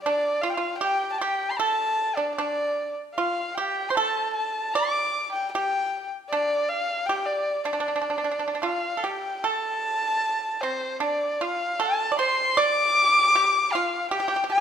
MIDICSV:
0, 0, Header, 1, 3, 480
1, 0, Start_track
1, 0, Tempo, 769231
1, 31, Time_signature, 2, 2, 24, 8
1, 991, Tempo, 789474
1, 3391, Tempo, 767263
1, 4831, Tempo, 792602
1, 7231, Tempo, 773196
1, 8972, End_track
2, 0, Start_track
2, 0, Title_t, "Erhu"
2, 0, Program_c, 0, 110
2, 19, Note_on_c, 0, 74, 92
2, 258, Note_on_c, 0, 77, 82
2, 267, Note_off_c, 0, 74, 0
2, 309, Note_on_c, 0, 79, 68
2, 319, Note_off_c, 0, 77, 0
2, 335, Note_on_c, 0, 77, 84
2, 345, Note_off_c, 0, 79, 0
2, 484, Note_off_c, 0, 77, 0
2, 488, Note_on_c, 0, 79, 94
2, 680, Note_off_c, 0, 79, 0
2, 699, Note_on_c, 0, 81, 62
2, 736, Note_on_c, 0, 79, 90
2, 745, Note_off_c, 0, 81, 0
2, 940, Note_on_c, 0, 84, 63
2, 950, Note_off_c, 0, 79, 0
2, 982, Note_on_c, 0, 81, 102
2, 992, Note_off_c, 0, 84, 0
2, 1339, Note_on_c, 0, 74, 79
2, 1348, Note_off_c, 0, 81, 0
2, 1453, Note_off_c, 0, 74, 0
2, 1457, Note_on_c, 0, 74, 83
2, 1801, Note_off_c, 0, 74, 0
2, 1943, Note_on_c, 0, 77, 84
2, 2184, Note_on_c, 0, 79, 86
2, 2193, Note_off_c, 0, 77, 0
2, 2391, Note_on_c, 0, 84, 63
2, 2400, Note_off_c, 0, 79, 0
2, 2425, Note_on_c, 0, 81, 94
2, 2434, Note_off_c, 0, 84, 0
2, 2657, Note_off_c, 0, 81, 0
2, 2661, Note_on_c, 0, 81, 87
2, 2906, Note_on_c, 0, 86, 98
2, 2915, Note_off_c, 0, 81, 0
2, 3261, Note_off_c, 0, 86, 0
2, 3264, Note_on_c, 0, 79, 87
2, 3379, Note_off_c, 0, 79, 0
2, 3383, Note_on_c, 0, 79, 95
2, 3727, Note_off_c, 0, 79, 0
2, 3868, Note_on_c, 0, 74, 95
2, 4110, Note_on_c, 0, 77, 97
2, 4120, Note_off_c, 0, 74, 0
2, 4343, Note_on_c, 0, 79, 92
2, 4352, Note_off_c, 0, 77, 0
2, 4467, Note_on_c, 0, 74, 86
2, 4476, Note_off_c, 0, 79, 0
2, 4703, Note_off_c, 0, 74, 0
2, 4707, Note_on_c, 0, 74, 80
2, 5284, Note_off_c, 0, 74, 0
2, 5319, Note_on_c, 0, 77, 82
2, 5557, Note_on_c, 0, 79, 78
2, 5566, Note_off_c, 0, 77, 0
2, 5803, Note_on_c, 0, 81, 100
2, 5812, Note_off_c, 0, 79, 0
2, 6511, Note_on_c, 0, 72, 86
2, 6520, Note_off_c, 0, 81, 0
2, 6754, Note_off_c, 0, 72, 0
2, 6758, Note_on_c, 0, 74, 87
2, 6996, Note_on_c, 0, 77, 93
2, 7005, Note_off_c, 0, 74, 0
2, 7238, Note_on_c, 0, 81, 99
2, 7247, Note_off_c, 0, 77, 0
2, 7471, Note_off_c, 0, 81, 0
2, 7475, Note_on_c, 0, 84, 96
2, 7715, Note_on_c, 0, 86, 125
2, 7724, Note_off_c, 0, 84, 0
2, 8425, Note_on_c, 0, 77, 94
2, 8435, Note_off_c, 0, 86, 0
2, 8662, Note_off_c, 0, 77, 0
2, 8666, Note_on_c, 0, 79, 97
2, 8893, Note_off_c, 0, 79, 0
2, 8919, Note_on_c, 0, 81, 91
2, 8972, Note_off_c, 0, 81, 0
2, 8972, End_track
3, 0, Start_track
3, 0, Title_t, "Pipa"
3, 0, Program_c, 1, 105
3, 37, Note_on_c, 1, 62, 72
3, 258, Note_off_c, 1, 62, 0
3, 271, Note_on_c, 1, 65, 70
3, 350, Note_off_c, 1, 65, 0
3, 358, Note_on_c, 1, 65, 64
3, 500, Note_off_c, 1, 65, 0
3, 505, Note_on_c, 1, 67, 75
3, 729, Note_off_c, 1, 67, 0
3, 758, Note_on_c, 1, 67, 75
3, 979, Note_off_c, 1, 67, 0
3, 995, Note_on_c, 1, 69, 78
3, 1328, Note_off_c, 1, 69, 0
3, 1347, Note_on_c, 1, 62, 63
3, 1461, Note_off_c, 1, 62, 0
3, 1475, Note_on_c, 1, 62, 68
3, 1810, Note_off_c, 1, 62, 0
3, 1958, Note_on_c, 1, 65, 71
3, 2179, Note_off_c, 1, 65, 0
3, 2199, Note_on_c, 1, 67, 67
3, 2381, Note_off_c, 1, 67, 0
3, 2399, Note_on_c, 1, 72, 55
3, 2437, Note_off_c, 1, 72, 0
3, 2440, Note_on_c, 1, 69, 78
3, 2893, Note_off_c, 1, 69, 0
3, 2915, Note_on_c, 1, 74, 82
3, 3367, Note_off_c, 1, 74, 0
3, 3400, Note_on_c, 1, 67, 73
3, 3736, Note_off_c, 1, 67, 0
3, 3885, Note_on_c, 1, 62, 79
3, 4334, Note_off_c, 1, 62, 0
3, 4366, Note_on_c, 1, 67, 76
3, 4693, Note_off_c, 1, 67, 0
3, 4715, Note_on_c, 1, 62, 65
3, 4756, Note_off_c, 1, 62, 0
3, 4764, Note_on_c, 1, 62, 50
3, 4801, Note_off_c, 1, 62, 0
3, 4808, Note_on_c, 1, 62, 53
3, 4848, Note_off_c, 1, 62, 0
3, 4857, Note_on_c, 1, 62, 41
3, 4894, Note_off_c, 1, 62, 0
3, 4903, Note_on_c, 1, 62, 47
3, 4932, Note_off_c, 1, 62, 0
3, 4939, Note_on_c, 1, 62, 38
3, 4980, Note_off_c, 1, 62, 0
3, 4990, Note_on_c, 1, 62, 44
3, 5028, Note_off_c, 1, 62, 0
3, 5038, Note_on_c, 1, 62, 40
3, 5069, Note_off_c, 1, 62, 0
3, 5076, Note_on_c, 1, 62, 42
3, 5113, Note_off_c, 1, 62, 0
3, 5120, Note_on_c, 1, 62, 37
3, 5161, Note_off_c, 1, 62, 0
3, 5168, Note_on_c, 1, 62, 42
3, 5209, Note_off_c, 1, 62, 0
3, 5218, Note_on_c, 1, 62, 37
3, 5254, Note_off_c, 1, 62, 0
3, 5261, Note_on_c, 1, 62, 43
3, 5298, Note_off_c, 1, 62, 0
3, 5305, Note_on_c, 1, 62, 42
3, 5311, Note_on_c, 1, 65, 67
3, 5348, Note_off_c, 1, 62, 0
3, 5499, Note_off_c, 1, 65, 0
3, 5519, Note_on_c, 1, 69, 47
3, 5558, Note_on_c, 1, 67, 66
3, 5560, Note_off_c, 1, 69, 0
3, 5785, Note_off_c, 1, 67, 0
3, 5801, Note_on_c, 1, 69, 76
3, 6496, Note_off_c, 1, 69, 0
3, 6522, Note_on_c, 1, 60, 69
3, 6743, Note_off_c, 1, 60, 0
3, 6748, Note_on_c, 1, 62, 75
3, 6974, Note_off_c, 1, 62, 0
3, 6995, Note_on_c, 1, 65, 69
3, 7216, Note_off_c, 1, 65, 0
3, 7229, Note_on_c, 1, 69, 85
3, 7415, Note_off_c, 1, 69, 0
3, 7427, Note_on_c, 1, 74, 61
3, 7469, Note_off_c, 1, 74, 0
3, 7472, Note_on_c, 1, 72, 81
3, 7695, Note_off_c, 1, 72, 0
3, 7710, Note_on_c, 1, 74, 90
3, 8166, Note_off_c, 1, 74, 0
3, 8196, Note_on_c, 1, 67, 84
3, 8418, Note_off_c, 1, 67, 0
3, 8442, Note_on_c, 1, 65, 74
3, 8661, Note_off_c, 1, 65, 0
3, 8667, Note_on_c, 1, 67, 80
3, 8712, Note_off_c, 1, 67, 0
3, 8720, Note_on_c, 1, 67, 54
3, 8762, Note_off_c, 1, 67, 0
3, 8771, Note_on_c, 1, 67, 59
3, 8810, Note_off_c, 1, 67, 0
3, 8821, Note_on_c, 1, 67, 48
3, 8858, Note_off_c, 1, 67, 0
3, 8868, Note_on_c, 1, 67, 55
3, 8898, Note_off_c, 1, 67, 0
3, 8905, Note_on_c, 1, 67, 48
3, 8946, Note_off_c, 1, 67, 0
3, 8972, End_track
0, 0, End_of_file